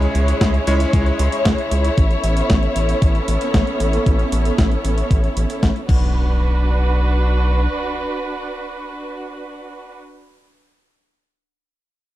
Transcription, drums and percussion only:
0.02 closed hi-hat soft
0.15 closed hi-hat medium
0.28 closed hi-hat medium
0.41 kick loud
0.41 snare loud
0.41 closed hi-hat soft
0.54 closed hi-hat soft
0.67 closed hi-hat medium
0.80 closed hi-hat medium
0.93 kick loud
0.93 closed hi-hat soft
1.06 closed hi-hat soft
1.19 closed hi-hat medium
1.32 closed hi-hat soft
1.45 kick loud
1.45 snare loud
1.45 closed hi-hat soft
1.58 closed hi-hat soft
1.71 closed hi-hat medium
1.85 closed hi-hat soft
1.98 kick loud
1.98 closed hi-hat soft
2.11 closed hi-hat soft
2.24 closed hi-hat medium
2.37 closed hi-hat soft
2.50 kick loud
2.50 snare loud
2.50 closed hi-hat soft
2.63 closed hi-hat soft
2.76 closed hi-hat medium
2.89 closed hi-hat soft
3.02 kick loud
3.02 closed hi-hat soft
3.15 closed hi-hat soft
3.28 closed hi-hat medium
3.41 closed hi-hat soft
3.54 kick loud
3.54 snare loud
3.54 closed hi-hat soft
3.67 closed hi-hat soft
3.80 closed hi-hat medium
3.93 closed hi-hat soft
4.06 kick loud
4.06 closed hi-hat soft
4.19 closed hi-hat soft
4.32 closed hi-hat medium
4.45 closed hi-hat soft
4.58 kick loud
4.58 snare loud
4.58 closed hi-hat soft
4.72 closed hi-hat soft
4.85 closed hi-hat medium
4.98 closed hi-hat soft
5.11 kick loud
5.11 closed hi-hat soft
5.24 closed hi-hat soft
5.37 closed hi-hat medium
5.50 closed hi-hat soft
5.63 kick loud
5.63 snare loud
5.63 closed hi-hat soft
5.76 closed hi-hat soft
5.89 kick loud
5.89 crash medium

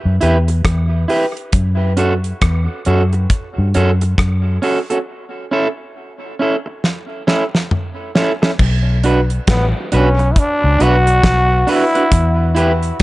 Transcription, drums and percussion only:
0.21 closed hi-hat medium
0.48 closed hi-hat medium
0.65 kick loud
0.65 cross-stick loud
0.65 closed hi-hat medium
1.09 open hi-hat medium
1.37 closed hi-hat medium
1.52 kick loud
1.52 closed hi-hat loud
1.97 closed hi-hat medium
2.24 closed hi-hat soft
2.41 kick loud
2.41 cross-stick loud
2.41 closed hi-hat medium
2.85 closed hi-hat medium
3.13 closed hi-hat soft
3.30 kick loud
3.30 closed hi-hat medium
3.74 closed hi-hat medium
4.01 closed hi-hat medium
4.18 kick loud
4.18 cross-stick loud
4.18 closed hi-hat medium
4.63 open hi-hat medium
4.90 closed hi-hat medium
6.84 snare medium
7.28 snare medium
7.55 snare medium
7.71 mid tom medium
8.15 snare medium
8.43 snare medium
8.59 kick loud
8.59 crash loud
9.04 closed hi-hat medium
9.30 closed hi-hat medium
9.47 kick loud
9.47 snare loud
9.47 closed hi-hat medium
9.92 closed hi-hat medium
10.19 closed hi-hat soft
10.36 kick loud
10.36 closed hi-hat medium
10.80 closed hi-hat medium
11.07 closed hi-hat medium
11.23 kick loud
11.23 snare loud
11.23 closed hi-hat medium
11.68 open hi-hat medium
11.95 closed hi-hat medium
12.12 kick loud
12.12 closed hi-hat loud
12.56 closed hi-hat medium
12.83 closed hi-hat soft
13.00 closed hi-hat medium

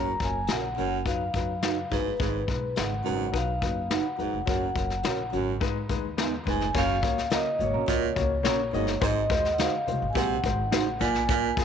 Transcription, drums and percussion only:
0.06 muted conga soft
0.20 kick medium
0.20 closed hi-hat medium
0.47 snare loud
0.47 closed hi-hat medium
0.47 high conga medium
0.64 muted conga soft
0.78 closed hi-hat medium
0.78 high conga medium
1.06 kick medium
1.06 closed hi-hat medium
1.06 muted conga soft
1.21 muted conga soft
1.34 kick medium
1.34 closed hi-hat medium
1.34 high conga soft
1.62 snare loud
1.62 closed hi-hat medium
1.62 muted conga soft
1.62 high conga soft
1.78 muted conga soft
1.91 kick medium
1.91 open hi-hat soft
1.91 low conga medium
2.20 kick loud
2.20 closed hi-hat medium
2.20 muted conga soft
2.20 low conga medium
2.35 muted conga soft
2.48 kick medium
2.48 closed hi-hat medium
2.76 snare loud
2.76 closed hi-hat medium
2.76 muted conga soft
2.76 high conga medium
2.91 muted conga soft
3.04 closed hi-hat medium
3.04 high conga medium
3.34 kick medium
3.34 closed hi-hat medium
3.48 muted conga soft
3.62 kick medium
3.62 closed hi-hat medium
3.62 high conga soft
3.90 snare loud
3.90 closed hi-hat medium
3.90 muted conga soft
3.90 high conga soft
4.19 closed hi-hat medium
4.19 low conga medium
4.47 kick loud
4.47 closed hi-hat medium
4.47 muted conga soft
4.47 low conga medium
4.61 muted conga soft
4.76 kick medium
4.76 closed hi-hat medium
4.90 snare soft
5.03 snare loud
5.03 closed hi-hat medium
5.03 muted conga soft
5.03 high conga medium
5.19 muted conga soft
5.33 closed hi-hat medium
5.33 high conga medium
5.61 kick medium
5.61 closed hi-hat medium
5.76 muted conga soft
5.89 kick medium
5.89 closed hi-hat medium
5.89 high conga medium
6.18 snare loud
6.18 closed hi-hat medium
6.18 muted conga soft
6.18 high conga soft
6.46 kick medium
6.46 closed hi-hat medium
6.46 low conga medium
6.61 snare soft
6.74 kick loud
6.74 crash medium
6.74 muted conga soft
6.74 low conga medium
6.89 muted conga soft
7.03 kick loud
7.03 closed hi-hat medium
7.18 snare soft
7.30 snare loud
7.30 closed hi-hat medium
7.30 muted conga soft
7.30 high conga medium
7.46 muted conga soft
7.59 closed hi-hat medium
7.59 high conga medium
7.59 low conga medium
7.88 kick medium
7.88 closed hi-hat medium
8.02 muted conga soft
8.16 kick medium
8.16 closed hi-hat medium
8.16 high conga medium
8.45 snare loud
8.45 closed hi-hat medium
8.45 muted conga soft
8.45 high conga soft
8.73 closed hi-hat medium
8.73 low conga medium
8.87 snare soft
9.01 kick loud
9.01 closed hi-hat medium
9.01 low conga medium
9.16 muted conga soft
9.30 kick loud
9.30 closed hi-hat medium
9.45 snare soft
9.58 snare loud
9.58 closed hi-hat medium
9.58 muted conga soft
9.58 high conga medium
9.73 muted conga soft
9.87 closed hi-hat medium
9.87 high conga medium
9.87 low conga medium
10.15 kick loud
10.15 closed hi-hat medium
10.30 muted conga soft
10.44 kick medium
10.44 closed hi-hat medium
10.44 high conga soft
10.72 snare loud
10.72 closed hi-hat medium
10.72 muted conga soft
10.72 high conga soft
11.00 kick medium
11.00 closed hi-hat medium
11.00 low conga medium
11.15 snare soft
11.29 kick loud
11.29 closed hi-hat medium
11.29 muted conga soft
11.29 low conga medium
11.57 kick loud
11.57 closed hi-hat medium

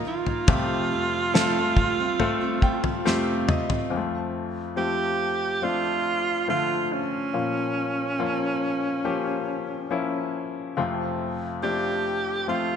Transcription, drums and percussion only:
0.26 floor tom medium
0.48 kick loud
0.48 floor tom loud
1.35 snare loud
1.77 kick medium
1.77 floor tom medium
2.20 floor tom medium
2.62 kick medium
2.84 floor tom medium
3.07 snare medium
3.49 mid tom medium
3.70 floor tom medium

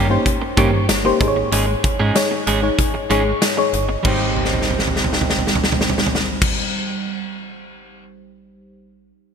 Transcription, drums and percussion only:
0.26 kick medium
0.26 closed hi-hat medium
0.57 kick loud
0.57 closed hi-hat medium
0.89 snare loud
0.89 closed hi-hat medium
0.89 tambourine medium
1.21 kick loud
1.21 closed hi-hat medium
1.52 closed hi-hat loud
1.84 kick loud
1.84 closed hi-hat medium
2.16 snare loud
2.16 closed hi-hat medium
2.16 tambourine medium
2.47 closed hi-hat medium
2.79 kick medium
2.79 closed hi-hat medium
3.10 closed hi-hat medium
3.42 snare loud
3.42 closed hi-hat loud
3.42 tambourine medium
3.73 closed hi-hat medium
4.05 kick loud
4.05 crash loud
4.36 floor tom soft
4.45 snare soft
4.53 floor tom soft
4.62 snare soft
4.71 floor tom medium
4.79 snare medium
4.87 floor tom medium
4.96 snare medium
5.04 floor tom medium
5.13 snare medium
5.21 floor tom medium
5.30 snare medium
5.38 floor tom medium
5.47 snare medium
5.55 floor tom medium
5.64 snare medium
5.72 floor tom medium
5.81 snare medium
5.90 floor tom medium
5.98 snare medium
6.07 floor tom medium
6.15 snare medium
6.42 kick loud
6.42 crash loud

